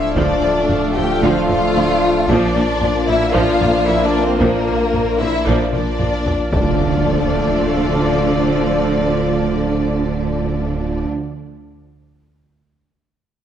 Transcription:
0.00 2.29 D1 medium
0.00 2.24 F3 loud
0.00 2.24 A3 loud
0.00 2.24 D4 loud
0.00 0.15 E4 loud
0.00 2.24 F4 loud
0.00 2.24 A4 loud
0.00 0.16 E5 loud
0.00 2.23 F5 loud
0.00 sub drop medium
0.16 0.24 D2 loud
0.16 0.41 F3 medium
0.16 0.95 D4 loud
0.16 0.94 D5 loud
0.16 taiko loud
0.43 0.51 D2 medium
0.43 0.52 F3 medium
0.43 taiko rim soft
0.69 0.77 D2 medium
0.69 0.78 F3 medium
0.69 taiko low-mid medium
0.95 1.04 D2 medium
0.95 1.05 F3 medium
0.95 1.22 G4 loud
0.95 1.21 G5 loud
1.22 1.30 D2 loud
1.22 1.31 D2 loud
1.22 1.47 F3 loud
1.22 1.48 F4 loud
1.22 1.48 F5 loud
1.22 taiko medium
1.49 1.57 D2 medium
1.49 1.58 F3 medium
1.49 2.27 F4 loud
1.49 2.27 F5 loud
1.49 taiko low-mid medium
1.76 1.84 D2 medium
1.76 1.84 F3 medium
2.27 6.52 A#1 loud
2.27 2.36 A#1 loud
2.27 2.37 A#2 loud
2.27 6.22 F3 loud
2.27 2.53 F3 loud
2.27 6.26 A#3 loud
2.27 6.29 A#3 loud
2.27 6.49 D4 medium
2.27 6.23 D4 loud
2.27 3.08 D4 loud
2.27 6.49 F4 loud
2.27 6.23 F4 loud
2.27 6.53 A#4 medium
2.27 3.06 D5 loud
2.27 6.49 F5 medium
2.27 taiko loud
2.55 2.63 A#1 medium
2.55 2.63 A#2 medium
2.55 2.64 F3 medium
2.55 taiko rim soft
2.81 2.89 A#1 medium
2.81 2.89 A#2 medium
2.81 2.90 F3 medium
2.81 taiko low-mid medium
3.08 3.16 A#1 loud
3.08 3.16 A#2 medium
3.08 3.16 F3 medium
3.08 3.34 E4 loud
3.08 3.35 E5 loud
3.34 3.43 A#1 loud
3.34 3.43 A#2 loud
3.34 3.59 F3 loud
3.34 3.86 F4 loud
3.34 3.88 F5 loud
3.34 taiko medium
3.61 3.69 A#1 medium
3.61 3.69 A#2 loud
3.61 3.69 F3 medium
3.61 taiko low-mid medium
3.87 3.96 A#1 medium
3.87 3.95 A#2 loud
3.87 3.96 F3 medium
3.87 4.05 E4 loud
3.87 4.05 E5 loud
4.05 4.23 D4 loud
4.05 4.23 D5 loud
4.23 4.40 C4 loud
4.23 4.41 C5 loud
4.40 4.49 A#1 loud
4.40 4.49 A#2 loud
4.40 4.65 F3 loud
4.40 5.20 A#3 loud
4.40 5.19 A#4 loud
4.40 taiko loud
4.67 4.75 A#1 medium
4.67 4.75 A#2 medium
4.67 4.76 F3 medium
4.94 5.02 A#1 medium
4.94 5.02 A#2 medium
4.94 5.02 F3 medium
4.94 taiko low-mid medium
5.20 5.29 A#1 medium
5.20 5.29 A#2 medium
5.20 5.29 F3 loud
5.20 5.46 E4 loud
5.20 5.47 E5 loud
5.46 5.55 A#1 loud
5.46 5.55 A#2 loud
5.46 5.71 F3 loud
5.46 5.72 D4 loud
5.46 5.72 D5 loud
5.46 taiko medium
5.73 5.82 A#1 medium
5.73 5.82 A#2 medium
5.73 5.81 F3 medium
5.73 6.51 D4 loud
5.73 6.51 D5 loud
5.73 taiko mid loud
5.99 6.08 A#1 medium
5.99 6.08 A#2 medium
5.99 6.08 F3 medium
5.99 taiko low-mid medium
6.26 taiko low medium
6.52 11.06 D1 medium
6.52 11.07 D2 loud
6.52 11.06 D3 medium
6.52 11.07 F3 loud
6.52 11.07 A3 medium
6.52 11.07 A3 loud
6.52 11.05 D4 medium
6.52 11.06 D4 medium
6.52 11.07 D4 medium
6.52 11.06 F4 medium
6.52 11.06 A4 loud
6.52 11.06 D5 loud
6.52 11.06 F5 loud
6.52 taiko loud
6.52 impact medium

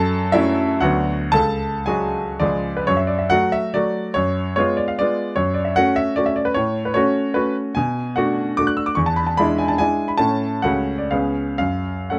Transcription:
0.00 0.32 F#2 medium
0.00 0.31 A4 medium
0.00 0.33 A5 medium
0.32 0.77 F#3 medium
0.32 0.77 A3 medium
0.32 0.77 C#4 medium
0.32 0.78 E4 medium
0.32 0.80 E5 loud
0.80 1.32 D2 medium
0.80 1.29 F#3 medium
0.80 1.30 B3 soft
0.80 1.30 D4 soft
0.80 1.30 F#4 medium
0.80 1.33 F#5 medium
1.32 1.86 C#2 medium
1.32 1.84 A4 medium
1.32 1.87 A5 medium
1.86 2.36 F#3 soft
1.86 2.37 G#3 soft
1.86 2.37 F#4 medium
1.86 2.41 G#4 soft
1.86 2.65 G#5 medium
2.40 2.87 C#2 medium
2.40 2.84 F3 soft
2.40 2.85 G#3 soft
2.40 2.85 G#4 soft
2.40 2.77 D5 medium
2.77 2.88 B4 medium
2.87 3.30 F#2 medium
2.87 2.98 C#5 medium
2.97 3.08 E5 medium
3.07 3.19 D5 medium
3.19 3.31 E5 medium
3.30 3.71 F#3 medium
3.30 3.71 A3 medium
3.30 3.71 F#4 medium
3.30 3.53 F#5 medium
3.52 3.75 E5 medium
3.74 4.11 F#3 soft
3.74 4.12 A3 soft
3.74 4.12 F#4 soft
3.74 4.15 D5 medium
4.14 4.56 F#2 medium
4.14 4.54 C#5 medium
4.56 4.94 G#3 medium
4.56 4.95 B3 medium
4.56 4.95 F4 medium
4.56 4.78 C#5 medium
4.77 4.88 D5 medium
4.88 4.98 F5 medium
4.99 5.33 G#3 soft
4.99 5.33 B3 soft
4.99 5.33 F4 soft
4.99 5.36 D5 medium
5.36 5.74 F#2 medium
5.36 5.54 C#5 medium
5.54 5.64 D5 soft
5.65 5.75 E5 medium
5.76 6.13 A3 soft
5.76 6.13 C#4 medium
5.76 6.13 F#4 medium
5.76 5.96 F#5 medium
5.96 6.16 E5 medium
6.16 6.52 A3 soft
6.16 6.52 C#4 soft
6.16 6.52 F#4 soft
6.16 6.26 D5 medium
6.26 6.35 E5 medium
6.36 6.45 D5 medium
6.45 6.55 B4 medium
6.54 6.94 A2 medium
6.54 6.84 C#5 medium
6.85 6.95 B4 soft
6.94 7.31 A3 medium
6.94 7.32 C#4 medium
6.94 7.32 F#4 medium
6.94 7.35 C#5 medium
7.34 7.72 A3 soft
7.34 7.72 C#4 soft
7.34 7.72 F#4 soft
7.34 7.55 B4 medium
7.75 8.16 B2 medium
7.75 8.17 G#5 medium
8.16 8.55 A3 medium
8.16 8.55 D4 medium
8.16 8.55 F#4 medium
8.16 8.58 F#5 medium
8.57 8.93 A3 soft
8.57 8.93 D4 soft
8.57 8.93 F#4 soft
8.57 8.68 D6 medium
8.67 8.77 F#6 medium
8.77 8.87 E6 medium
8.86 8.96 D6 medium
8.95 9.37 E2 medium
8.95 9.06 C#6 medium
9.06 9.17 A5 medium
9.16 9.27 B5 medium
9.27 9.38 A5 medium
9.37 9.76 G#3 medium
9.37 9.76 D4 medium
9.37 9.77 E4 medium
9.37 9.59 B5 medium
9.58 9.69 G#5 medium
9.68 9.79 A5 medium
9.78 10.16 G#3 soft
9.78 10.16 D4 soft
9.78 10.17 E4 soft
9.78 10.10 G#5 medium
10.08 10.19 B5 medium
10.18 10.63 A2 medium
10.18 10.60 A3 soft
10.18 10.60 C#4 soft
10.18 10.61 E4 soft
10.18 10.63 A5 medium
10.62 11.10 C#2 medium
10.62 11.07 A3 soft
10.62 11.07 C#4 soft
10.62 11.08 F#4 soft
10.62 10.99 F#5 medium
10.98 11.11 D5 soft
11.11 11.58 C#2 soft
11.11 11.55 B3 soft
11.11 11.55 C#4 soft
11.11 11.56 G#4 soft
11.11 11.57 F5 medium
11.58 12.09 F#2 soft
11.58 12.10 F5 medium
12.10 12.19 A3 soft
12.10 12.19 C#4 soft
12.10 12.19 A4 soft
12.10 12.19 F#5 soft

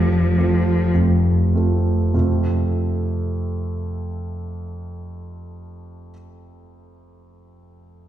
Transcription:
0.00 0.95 F1 soft
0.00 0.94 F2 soft
0.00 0.89 F3 soft
0.00 0.37 A3 soft
0.00 0.38 C4 soft
0.00 0.38 F4 soft
0.37 0.90 A3 soft
0.37 0.90 C4 soft
0.37 0.90 F4 soft
0.94 1.52 F1 soft
0.94 1.52 F2 soft
1.54 2.10 A3 soft
1.54 2.10 C4 soft
1.54 2.10 F4 soft
2.14 6.10 F2 soft
2.14 6.11 C3 soft
2.14 6.11 A3 soft
2.14 6.11 C4 soft
2.14 6.12 F4 soft
2.14 6.12 A4 soft

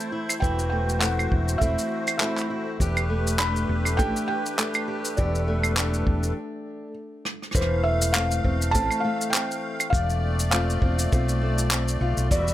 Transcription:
0.00 0.41 E3 medium
0.00 0.72 A3 medium
0.00 6.33 A3 medium
0.00 1.01 C4 medium
0.00 0.11 E4 medium
0.00 0.41 E4 medium
0.00 2.77 C5 medium
0.00 shaker soft
0.12 0.41 E4 medium
0.29 claves medium
0.29 shaker medium
0.40 1.27 E1 medium
0.40 2.80 E3 medium
0.40 1.01 E4 medium
0.40 2.78 F#4 medium
0.40 0.68 G5 medium
0.40 kick loud
0.40 shaker medium
0.59 shaker soft
0.70 1.01 A3 medium
0.70 0.99 G5 medium
0.89 shaker medium
0.99 1.61 A3 medium
0.99 1.60 C4 medium
0.99 1.61 E4 medium
0.99 1.56 F#5 medium
0.99 clap medium
0.99 shaker medium
1.19 claves medium
1.19 shaker soft
1.32 1.56 E1 medium
1.32 kick medium
1.48 shaker medium
1.58 1.75 E1 medium
1.58 2.20 A3 medium
1.58 2.20 C4 medium
1.58 2.16 E5 medium
1.58 kick loud
1.58 shaker medium
1.62 2.21 E4 medium
1.78 shaker soft
2.07 claves medium
2.07 shaker medium
2.18 3.09 A3 medium
2.18 2.87 C4 medium
2.18 2.62 E5 medium
2.18 clap medium
2.22 2.49 E4 medium
2.22 shaker medium
2.38 clap soft
2.38 shaker soft
2.50 2.80 E4 medium
2.80 3.65 E1 medium
2.80 5.16 E2 medium
2.80 5.15 G4 medium
2.80 3.39 G4 medium
2.80 6.33 B4 medium
2.80 kick medium
2.80 shaker medium
2.97 claves medium
2.97 shaker soft
3.10 3.39 A3 medium
3.27 shaker medium
3.39 3.98 A3 medium
3.39 3.98 D4 medium
3.39 3.98 G4 medium
3.39 4.00 B5 loud
3.39 clap medium
3.39 shaker medium
3.56 shaker soft
3.69 3.99 E1 medium
3.85 claves medium
3.85 shaker medium
3.97 4.12 A1 medium
3.97 4.58 A3 medium
3.97 4.58 D4 medium
3.97 4.58 G4 medium
3.97 4.26 G5 loud
3.97 kick loud
3.97 shaker medium
4.16 shaker soft
4.28 5.13 G5 loud
4.46 shaker medium
4.58 5.47 A3 medium
4.58 5.77 D4 medium
4.58 4.87 G4 medium
4.58 clap medium
4.58 shaker medium
4.74 claves medium
4.74 shaker soft
4.88 5.17 G4 medium
5.05 shaker medium
5.17 6.03 E1 medium
5.17 6.37 E2 medium
5.17 5.77 G4 medium
5.17 6.36 A4 medium
5.17 6.91 D5 medium
5.17 kick loud
5.17 shaker medium
5.35 shaker soft
5.48 5.77 A3 medium
5.63 claves medium
5.63 shaker medium
5.77 6.87 A3 medium
5.77 6.37 D4 medium
5.77 6.37 G4 medium
5.77 clap medium
5.77 shaker medium
5.94 shaker soft
6.07 6.31 E1 medium
6.07 kick loud
6.23 shaker medium
7.25 cross-stick medium
7.42 cross-stick soft
7.51 8.40 E1 medium
7.51 7.83 C5 medium
7.51 kick loud
7.51 cross-stick soft
7.51 shaker medium
7.56 10.56 E3 medium
7.56 12.27 A3 medium
7.56 9.91 F5 medium
7.61 cross-stick soft
7.84 8.15 E5 medium
8.02 shaker medium
8.13 8.73 A3 medium
8.13 8.43 C4 medium
8.13 8.75 F5 loud
8.13 clap medium
8.13 shaker medium
8.31 shaker medium
8.44 8.75 E1 medium
8.44 8.74 C4 medium
8.44 kick medium
8.62 shaker medium
8.71 8.88 A1 medium
8.71 9.03 A3 medium
8.71 9.32 C4 medium
8.71 9.00 A5 loud
8.71 kick loud
8.71 shaker medium
8.91 claves medium
8.91 shaker soft
9.00 9.33 F5 medium
9.04 10.51 A3 medium
9.21 shaker medium
9.30 10.52 C4 medium
9.30 9.93 G5 medium
9.30 clap loud
9.35 shaker medium
9.51 shaker medium
9.80 claves medium
9.80 shaker medium
9.90 10.78 E1 loud
9.90 10.49 F5 medium
9.90 kick loud
9.90 shaker medium
9.94 12.29 D5 medium
10.10 shaker soft
10.39 shaker medium
10.51 11.11 A3 medium
10.51 10.81 C4 medium
10.51 11.12 F4 medium
10.51 11.07 F5 medium
10.51 clap medium
10.51 shaker medium
10.70 shaker soft
10.82 11.06 E1 medium
10.82 11.12 C4 medium
10.82 kick loud
10.99 shaker medium
11.12 11.97 B1 loud
11.12 11.40 A3 medium
11.12 11.70 C4 medium
11.12 12.00 F4 medium
11.12 kick loud
11.12 shaker medium
11.29 shaker medium
11.41 12.37 A3 medium
11.58 shaker medium
11.71 12.37 C4 medium
11.71 clap loud
11.71 shaker medium
11.88 shaker medium
12.01 12.14 B1 medium
12.01 12.37 F4 medium
12.17 12.28 B1 medium
12.17 shaker medium
12.31 12.54 E1 loud
12.31 12.54 E2 medium
12.31 12.54 G3 medium
12.31 12.54 F#4 medium
12.31 12.54 D5 medium
12.31 12.54 E5 medium
12.31 kick loud
12.31 shaker medium
12.48 shaker soft

